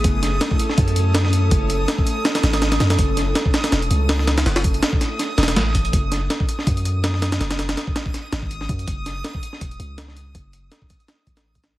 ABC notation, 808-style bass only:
X:1
M:4/4
L:1/8
Q:"Swing 16ths" 1/4=163
K:F#dor
V:1 name="808-style bass" clef=bass
F,,,2 z2 F,,4 | F,,,2 z3 G,,,2 F,, | F,,,2 z2 E,,, C,,3 | F,,,2 z3 E,,, A,,,2 |
F,,,2 z2 F,,4 | F,,,2 z3 G,,,2 F,, | F,,,2 z2 E,,, C,,3 | F,,,2 z3 A,,,3 |]